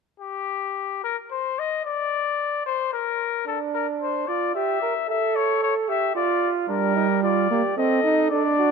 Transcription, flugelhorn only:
0, 0, Header, 1, 2, 480
1, 0, Start_track
1, 0, Tempo, 553506
1, 183, Time_signature, 3, 2, 24, 8
1, 1140, Tempo, 538117
1, 7739, End_track
2, 0, Start_track
2, 0, Title_t, "Flugelhorn"
2, 0, Program_c, 0, 56
2, 3064, Note_on_c, 0, 62, 84
2, 3751, Note_off_c, 0, 62, 0
2, 3785, Note_on_c, 0, 65, 77
2, 4020, Note_off_c, 0, 65, 0
2, 4025, Note_on_c, 0, 67, 86
2, 4260, Note_off_c, 0, 67, 0
2, 4265, Note_on_c, 0, 70, 77
2, 4373, Note_off_c, 0, 70, 0
2, 4503, Note_on_c, 0, 69, 89
2, 5216, Note_on_c, 0, 67, 80
2, 5229, Note_off_c, 0, 69, 0
2, 5448, Note_off_c, 0, 67, 0
2, 5453, Note_on_c, 0, 65, 93
2, 5926, Note_off_c, 0, 65, 0
2, 5931, Note_on_c, 0, 62, 77
2, 6167, Note_off_c, 0, 62, 0
2, 6172, Note_on_c, 0, 63, 74
2, 6282, Note_off_c, 0, 63, 0
2, 6413, Note_on_c, 0, 65, 77
2, 6653, Note_off_c, 0, 65, 0
2, 6659, Note_on_c, 0, 67, 69
2, 6891, Note_off_c, 0, 67, 0
2, 6896, Note_on_c, 0, 69, 80
2, 7367, Note_off_c, 0, 69, 0
2, 7382, Note_on_c, 0, 69, 73
2, 7490, Note_off_c, 0, 69, 0
2, 7624, Note_on_c, 0, 66, 71
2, 7733, Note_off_c, 0, 66, 0
2, 7739, End_track
0, 0, End_of_file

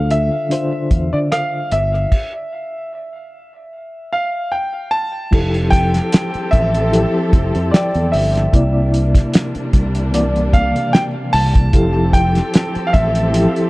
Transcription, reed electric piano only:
0, 0, Header, 1, 2, 480
1, 0, Start_track
1, 0, Key_signature, -1, "major"
1, 0, Tempo, 802139
1, 1267, Time_signature, 4, 2, 24, 8
1, 8197, End_track
2, 0, Start_track
2, 0, Title_t, "Reed electric piano"
2, 0, Program_c, 0, 4
2, 0, Control_c, 0, 64, 127
2, 0, Note_on_c, 0, 50, 61
2, 0, Note_on_c, 0, 62, 49
2, 0, Note_on_c, 0, 65, 54
2, 0, Note_on_c, 0, 69, 63
2, 0, Note_on_c, 0, 72, 74
2, 151, Note_off_c, 0, 50, 0
2, 154, Note_off_c, 0, 62, 0
2, 158, Note_off_c, 0, 65, 0
2, 161, Note_off_c, 0, 69, 0
2, 293, Note_on_c, 0, 50, 60
2, 301, Note_on_c, 0, 62, 61
2, 307, Note_on_c, 0, 65, 59
2, 313, Note_off_c, 0, 72, 0
2, 313, Note_on_c, 0, 72, 76
2, 957, Note_off_c, 0, 50, 0
2, 961, Note_off_c, 0, 62, 0
2, 965, Note_off_c, 0, 65, 0
2, 968, Note_off_c, 0, 72, 0
2, 1274, Control_c, 0, 64, 0
2, 3178, Note_on_c, 0, 53, 65
2, 3182, Note_on_c, 0, 64, 53
2, 3189, Note_on_c, 0, 67, 60
2, 3195, Note_on_c, 0, 69, 77
2, 3299, Control_c, 0, 64, 127
2, 3839, Note_off_c, 0, 53, 0
2, 3841, Note_off_c, 0, 64, 0
2, 3845, Note_off_c, 0, 67, 0
2, 3848, Note_off_c, 0, 69, 0
2, 4132, Note_on_c, 0, 53, 72
2, 4139, Note_on_c, 0, 64, 60
2, 4145, Note_on_c, 0, 67, 65
2, 4151, Note_on_c, 0, 69, 84
2, 4796, Note_off_c, 0, 53, 0
2, 4799, Note_off_c, 0, 64, 0
2, 4802, Note_off_c, 0, 67, 0
2, 4805, Note_off_c, 0, 69, 0
2, 5095, Note_on_c, 0, 48, 70
2, 5102, Note_on_c, 0, 58, 61
2, 5109, Note_on_c, 0, 64, 64
2, 5112, Control_c, 0, 64, 0
2, 5116, Note_on_c, 0, 74, 74
2, 5210, Control_c, 0, 64, 127
2, 5756, Note_off_c, 0, 48, 0
2, 5760, Note_off_c, 0, 58, 0
2, 5763, Note_off_c, 0, 64, 0
2, 5766, Note_off_c, 0, 74, 0
2, 6051, Note_on_c, 0, 48, 85
2, 6058, Note_on_c, 0, 58, 82
2, 6065, Note_on_c, 0, 52, 83
2, 6072, Note_on_c, 0, 74, 93
2, 6713, Note_off_c, 0, 48, 0
2, 6717, Note_off_c, 0, 58, 0
2, 6720, Note_off_c, 0, 52, 0
2, 6724, Note_off_c, 0, 74, 0
2, 7010, Note_on_c, 0, 53, 69
2, 7018, Note_on_c, 0, 64, 60
2, 7024, Note_on_c, 0, 67, 68
2, 7029, Control_c, 0, 64, 0
2, 7030, Note_on_c, 0, 69, 70
2, 7118, Control_c, 0, 64, 127
2, 7672, Note_off_c, 0, 53, 0
2, 7677, Note_off_c, 0, 64, 0
2, 7679, Note_off_c, 0, 67, 0
2, 7682, Note_off_c, 0, 69, 0
2, 7966, Note_on_c, 0, 53, 72
2, 7974, Note_on_c, 0, 64, 70
2, 7981, Note_on_c, 0, 67, 73
2, 7987, Note_on_c, 0, 69, 81
2, 8197, Note_off_c, 0, 53, 0
2, 8197, Note_off_c, 0, 64, 0
2, 8197, Note_off_c, 0, 67, 0
2, 8197, Note_off_c, 0, 69, 0
2, 8197, End_track
0, 0, End_of_file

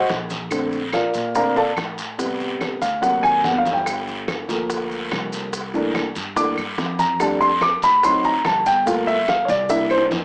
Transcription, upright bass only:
0, 0, Header, 1, 2, 480
1, 0, Start_track
1, 0, Tempo, 417246
1, 591, Time_signature, 4, 2, 24, 8
1, 11787, End_track
2, 0, Start_track
2, 0, Title_t, "Upright bass"
2, 0, Program_c, 0, 32
2, 114, Note_on_c, 0, 34, 96
2, 1247, Note_off_c, 0, 34, 0
2, 1315, Note_on_c, 0, 46, 81
2, 1992, Note_off_c, 0, 46, 0
2, 2033, Note_on_c, 0, 45, 84
2, 3169, Note_off_c, 0, 45, 0
2, 3238, Note_on_c, 0, 38, 89
2, 3687, Note_off_c, 0, 38, 0
2, 3723, Note_on_c, 0, 32, 69
2, 3947, Note_off_c, 0, 32, 0
2, 3956, Note_on_c, 0, 31, 89
2, 5091, Note_off_c, 0, 31, 0
2, 5162, Note_on_c, 0, 38, 95
2, 5838, Note_off_c, 0, 38, 0
2, 5882, Note_on_c, 0, 36, 86
2, 7013, Note_off_c, 0, 36, 0
2, 7085, Note_on_c, 0, 43, 90
2, 7531, Note_off_c, 0, 43, 0
2, 7563, Note_on_c, 0, 43, 70
2, 7787, Note_off_c, 0, 43, 0
2, 7798, Note_on_c, 0, 41, 90
2, 8928, Note_off_c, 0, 41, 0
2, 9002, Note_on_c, 0, 38, 91
2, 9673, Note_off_c, 0, 38, 0
2, 9718, Note_on_c, 0, 31, 93
2, 10845, Note_off_c, 0, 31, 0
2, 10912, Note_on_c, 0, 36, 99
2, 11585, Note_off_c, 0, 36, 0
2, 11634, Note_on_c, 0, 41, 90
2, 11787, Note_off_c, 0, 41, 0
2, 11787, End_track
0, 0, End_of_file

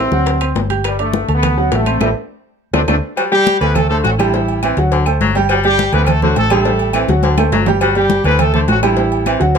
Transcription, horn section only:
0, 0, Header, 1, 2, 480
1, 0, Start_track
1, 0, Tempo, 290276
1, 1404, Time_signature, 4, 2, 24, 8
1, 15846, End_track
2, 0, Start_track
2, 0, Title_t, "Horn section"
2, 0, Program_c, 0, 61
2, 5260, Note_on_c, 0, 66, 92
2, 5265, Note_on_c, 0, 54, 70
2, 5366, Note_off_c, 0, 66, 0
2, 5370, Note_off_c, 0, 54, 0
2, 5494, Note_on_c, 0, 67, 126
2, 5511, Note_on_c, 0, 55, 96
2, 5940, Note_off_c, 0, 67, 0
2, 5950, Note_off_c, 0, 55, 0
2, 5961, Note_on_c, 0, 71, 111
2, 5994, Note_on_c, 0, 59, 84
2, 6190, Note_off_c, 0, 71, 0
2, 6208, Note_off_c, 0, 59, 0
2, 6210, Note_on_c, 0, 69, 103
2, 6240, Note_on_c, 0, 57, 77
2, 6429, Note_off_c, 0, 69, 0
2, 6449, Note_on_c, 0, 69, 101
2, 6467, Note_off_c, 0, 57, 0
2, 6490, Note_on_c, 0, 57, 75
2, 6558, Note_off_c, 0, 69, 0
2, 6589, Note_off_c, 0, 57, 0
2, 6684, Note_on_c, 0, 66, 97
2, 6724, Note_on_c, 0, 54, 73
2, 6794, Note_off_c, 0, 66, 0
2, 6825, Note_off_c, 0, 54, 0
2, 6927, Note_on_c, 0, 64, 85
2, 6961, Note_on_c, 0, 52, 68
2, 7823, Note_off_c, 0, 64, 0
2, 7840, Note_off_c, 0, 52, 0
2, 9107, Note_on_c, 0, 66, 88
2, 9117, Note_on_c, 0, 54, 73
2, 9211, Note_off_c, 0, 66, 0
2, 9218, Note_off_c, 0, 54, 0
2, 9342, Note_on_c, 0, 67, 120
2, 9349, Note_on_c, 0, 55, 96
2, 9781, Note_off_c, 0, 67, 0
2, 9786, Note_off_c, 0, 55, 0
2, 9825, Note_on_c, 0, 59, 95
2, 9825, Note_on_c, 0, 71, 109
2, 9971, Note_off_c, 0, 71, 0
2, 9991, Note_on_c, 0, 71, 74
2, 9996, Note_off_c, 0, 59, 0
2, 10049, Note_off_c, 0, 71, 0
2, 10062, Note_on_c, 0, 69, 97
2, 10065, Note_on_c, 0, 57, 84
2, 10294, Note_off_c, 0, 69, 0
2, 10296, Note_off_c, 0, 57, 0
2, 10309, Note_on_c, 0, 66, 88
2, 10310, Note_on_c, 0, 54, 71
2, 10521, Note_off_c, 0, 66, 0
2, 10522, Note_off_c, 0, 54, 0
2, 10556, Note_on_c, 0, 69, 107
2, 10558, Note_on_c, 0, 57, 80
2, 10765, Note_off_c, 0, 69, 0
2, 10766, Note_off_c, 0, 57, 0
2, 10808, Note_on_c, 0, 69, 94
2, 10810, Note_on_c, 0, 57, 77
2, 11679, Note_off_c, 0, 69, 0
2, 11680, Note_off_c, 0, 57, 0
2, 12929, Note_on_c, 0, 66, 92
2, 12947, Note_on_c, 0, 54, 74
2, 13148, Note_off_c, 0, 66, 0
2, 13158, Note_off_c, 0, 54, 0
2, 13174, Note_on_c, 0, 67, 110
2, 13181, Note_on_c, 0, 55, 93
2, 13613, Note_off_c, 0, 67, 0
2, 13617, Note_off_c, 0, 55, 0
2, 13654, Note_on_c, 0, 71, 116
2, 13664, Note_on_c, 0, 59, 83
2, 13870, Note_off_c, 0, 71, 0
2, 13875, Note_off_c, 0, 59, 0
2, 13891, Note_on_c, 0, 69, 104
2, 13903, Note_on_c, 0, 57, 75
2, 14103, Note_off_c, 0, 69, 0
2, 14114, Note_off_c, 0, 57, 0
2, 14122, Note_on_c, 0, 69, 99
2, 14134, Note_on_c, 0, 57, 78
2, 14230, Note_off_c, 0, 69, 0
2, 14238, Note_off_c, 0, 57, 0
2, 14373, Note_on_c, 0, 66, 108
2, 14380, Note_on_c, 0, 54, 75
2, 14589, Note_off_c, 0, 66, 0
2, 14593, Note_off_c, 0, 54, 0
2, 14599, Note_on_c, 0, 64, 83
2, 14604, Note_on_c, 0, 52, 71
2, 15492, Note_off_c, 0, 64, 0
2, 15495, Note_off_c, 0, 52, 0
2, 15846, End_track
0, 0, End_of_file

